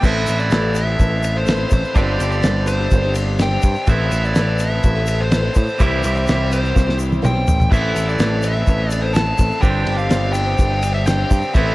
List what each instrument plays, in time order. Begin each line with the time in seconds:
0.00 picked electric bass A1, steel-string acoustic guitar A2 E3 A3 C4 A4 B4, clean electric guitar B3, upright piano E4 A4, harmonium B4, kick, crash, shaker
0.04 clean electric guitar E4, harmonium A4, upright piano B4, lead electric guitar E5
0.25 picked electric bass A1, steel-string acoustic guitar A3 C4 A4, ride, shaker
0.39 lead electric guitar D5, shaker
0.50 picked electric bass A1, steel-string acoustic guitar A2 E3 A3 C4 A4 B4, upright piano E4 A4 B4, snare, ride, shaker
0.73 steel-string acoustic guitar A3 C4 A4 B4, lead electric guitar E5, ride, shaker
0.84 steel-string acoustic guitar A3 C4 A4 B4
0.99 picked electric bass A1, upright piano E4 A4 B4, kick, ride, shaker
1.09 steel-string acoustic guitar A3 C4 A4 B4
1.20 steel-string acoustic guitar A3 C4 A4 B4, shaker
1.24 ride
1.37 lead electric guitar C5
1.45 steel-string acoustic guitar A2 E3 A3 C4 A4 B4, upright piano E4, snare, ride, shaker
1.49 upright piano A4 B4
1.56 steel-string acoustic guitar A3 C4 A4 B4
1.69 picked electric bass A1, steel-string acoustic guitar A3 C4 A4 B4, lead electric guitar C5, kick, ride, shaker
1.84 shaker
1.94 picked electric bass G1, clean electric guitar G2 D3 C4, steel-string acoustic guitar G3 D4 G4 C5, upright piano C4 D4 G4 C5, harmonium D4 G4 C5, lead electric guitar D5, kick, ride, shaker
2.16 picked electric bass G1, steel-string acoustic guitar G3 D4 G4 C5, ride, shaker
2.31 lead electric guitar D5, shaker
2.41 picked electric bass G1, steel-string acoustic guitar G3 D4 G4 C5, upright piano C4 D4 G4 C5, snare, ride, shaker
2.65 steel-string acoustic guitar G3 D4 G4 C5, lead electric guitar C5, ride, shaker
2.78 steel-string acoustic guitar D4 G4 C5
2.91 picked electric bass G1, upright piano C4 D4 G4 C5, kick, ride, shaker
3.03 steel-string acoustic guitar D4 G4 C5
3.15 steel-string acoustic guitar G3 D4 G4 C5, ride, shaker
3.39 steel-string acoustic guitar G3 D4 G4 C5, upright piano C4 D4 G4 C5, lead electric guitar G5, snare, ride, shaker
3.51 steel-string acoustic guitar D4 G4 C5
3.62 picked electric bass G2, steel-string acoustic guitar G3 D4 G4 C5, kick, ride, shaker
3.75 shaker
3.87 picked electric bass A1, steel-string acoustic guitar A2 E3 A3 C4 A4 B4, clean electric guitar B3 E4, upright piano E4 A4 B4, harmonium A4 B4, lead electric guitar E5, kick, ride, shaker
4.11 picked electric bass A1, steel-string acoustic guitar A3 B4, ride, shaker
4.24 lead electric guitar D5, shaker
4.35 picked electric bass A1, steel-string acoustic guitar A2 E3 A3 C4 A4 B4, upright piano E4 A4 B4, snare, ride, shaker
4.59 steel-string acoustic guitar A3 C4 A4 B4, lead electric guitar E5, ride, shaker
4.71 steel-string acoustic guitar A3 C4 A4 B4
4.83 picked electric bass A1, upright piano E4 A4 B4, kick, ride, shaker
4.95 steel-string acoustic guitar A3 C4 A4 B4
5.06 steel-string acoustic guitar A3 C4 A4 B4, ride, shaker
5.20 lead electric guitar C5
5.30 steel-string acoustic guitar A2 E3 A3 C4 A4 B4, upright piano E4 A4 B4, snare, ride, shaker
5.42 steel-string acoustic guitar A3 C4 A4 B4
5.54 picked electric bass A2, steel-string acoustic guitar A3 C4 A4 B4, lead electric guitar C5, kick, ride, shaker
5.68 shaker
5.79 picked electric bass C2, steel-string acoustic guitar C3 E3 G3 C4 E4 C5, upright piano C4 E4 G4 C5, harmonium E4 G4 C5, clean electric guitar G4, lead electric guitar E5, kick, ride, shaker
6.02 picked electric bass C2, steel-string acoustic guitar G3 C4 E4 C5, ride, shaker
6.16 lead electric guitar E5, shaker
6.26 picked electric bass C2, steel-string acoustic guitar C3 E3 G3 C4 E4 C5, upright piano C4 E4 G4 C5, snare, ride, shaker
6.50 steel-string acoustic guitar G3 C4 E4 C5, lead electric guitar C5, ride, shaker
6.62 steel-string acoustic guitar G3 C4 E4 C5, shaker
6.74 picked electric bass C2, upright piano C4 E4 G4 C5, kick, snare, shaker
6.86 steel-string acoustic guitar G3 C4 E4 C5, snare
6.98 steel-string acoustic guitar G3 C4 E4 C5, shaker
7.12 high tom, shaker
7.21 picked electric bass B1, steel-string acoustic guitar C3 E3 G3 C4 E4 C5, upright piano C4 E4 G4 C5, mid tom, shaker
7.25 lead electric guitar G5
7.34 steel-string acoustic guitar G3 C4 E4 C5
7.47 picked electric bass A1, steel-string acoustic guitar G3 C4 E4 C5, floor tom, shaker
7.60 floor tom, shaker
7.70 picked electric bass A1, steel-string acoustic guitar A2 E3 A3 C4 A4 B4, clean electric guitar B3 E4, upright piano E4 A4 B4, harmonium A4 B4, lead electric guitar E5, kick, crash, shaker
7.94 picked electric bass A1, steel-string acoustic guitar A3 C4 A4 B4, ride, shaker
8.08 lead electric guitar D5, shaker
8.18 picked electric bass A1, steel-string acoustic guitar A2 E3 A3 C4 A4 B4, upright piano E4 A4 B4, snare, ride, shaker
8.42 steel-string acoustic guitar A3 C4 A4 B4, lead electric guitar E5, ride, shaker
8.54 steel-string acoustic guitar A3 C4 A4 B4
8.67 picked electric bass A1, upright piano E4 A4 B4, kick, ride, shaker
8.78 steel-string acoustic guitar A3 C4 A4 B4
8.90 steel-string acoustic guitar A3 C4 A4 B4, lead electric guitar D5, ride, shaker
9.02 lead electric guitar C5
9.13 steel-string acoustic guitar A2 E3 A3 C4 A4 B4, upright piano E4 A4 B4, lead electric guitar A5, snare, ride, shaker
9.25 steel-string acoustic guitar A3 C4 A4 B4
9.36 picked electric bass A1, steel-string acoustic guitar A3 C4 A4 B4, kick, ride, shaker
9.51 shaker
9.60 picked electric bass G1, clean electric guitar G2 D3 C4, steel-string acoustic guitar G3 D4 G4 C5, upright piano C4 D4 G4 C5, harmonium C4 D4 G4, lead electric guitar G5, kick, ride, shaker
9.84 picked electric bass G1, steel-string acoustic guitar G3 D4 G4 C5, ride
9.98 lead electric guitar F5, shaker
10.09 picked electric bass G1, steel-string acoustic guitar G3 D4 G4 C5, upright piano C4 D4 G4 C5, snare, ride, shaker
10.33 steel-string acoustic guitar G3 D4 G4 C5, lead electric guitar G5, ride, shaker
10.46 steel-string acoustic guitar D4 G4 C5
10.58 picked electric bass G1, upright piano C4 D4 G4 B4, kick, ride, shaker
10.69 steel-string acoustic guitar D4 G4 C5
10.83 steel-string acoustic guitar G3 D4 G4 C5, ride, shaker
10.94 lead electric guitar E5
11.05 steel-string acoustic guitar G3 D4 G4 C5, upright piano C4 D4 G4 C5, lead electric guitar G5, snare, ride, shaker
11.18 steel-string acoustic guitar D4 G4 C5
11.30 picked electric bass G2, steel-string acoustic guitar G3 D4 G4 C5, kick, ride, shaker
11.42 shaker
11.54 picked electric bass A1, steel-string acoustic guitar A2 E3 A3 C4 A4 B4, clean electric guitar B3 E4, upright piano E4 A4 B4, harmonium A4 B4, lead electric guitar E5, kick, ride, shaker